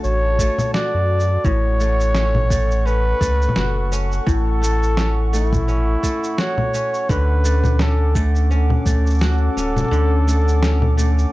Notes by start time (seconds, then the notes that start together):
Already playing: D3 A3 C#4 F#4 A5
0.04 A1 C#5, shaker
0.39 A3, kick, shaker
0.58 low conga, shaker
0.74 F#4 D5, snare, shaker
0.94 F#2
1.20 shaker
1.43 A1 A2 A4 C#5 F#5 C#6, kick, shaker
1.80 A3, shaker
2.00 shaker
2.15 C#4, snare, shaker
2.35 low conga
2.50 A3, kick, shaker
2.71 shaker
2.86 C#4 B4, shaker
3.21 C#2 A3, kick, shaker
3.42 shaker
3.49 low conga
3.56 F#1 F#4, snare, shaker
3.92 C#4, shaker
4.12 shaker
4.26 A1 A2 A4, kick, shaker
4.62 A3, shaker
4.83 shaker
4.97 C#4, snare, shaker
5.33 A3 E4, shaker
5.52 kick, low conga, shaker
5.68 C#4, shaker
6.03 A3, kick, shaker
6.24 shaker
6.38 F#4 C#5, snare, shaker
6.58 low conga
6.74 C#4, shaker
6.94 shaker
7.09 D2 D3 C#4 B4 D6, kick, shaker
7.45 A3, shaker
7.64 low conga, shaker
7.79 C#4 A4, snare, shaker
8.15 A3, kick, shaker
8.35 shaker
8.51 C#4 A4, shaker
8.70 low conga
8.86 D2 A3, kick, shaker
9.07 shaker
9.10 shaker
9.14 shaker
9.18 F#4, snare, shaker
9.22 shaker
9.38 shaker
9.56 D1 C#4, shaker
9.76 low conga, shaker
9.80 low conga
9.84 low conga
9.88 D2 D3, low conga
9.93 shaker
10.28 A3, shaker
10.48 shaker
10.63 C#4, snare, shaker
10.82 low conga
10.97 A3, shaker
11.19 shaker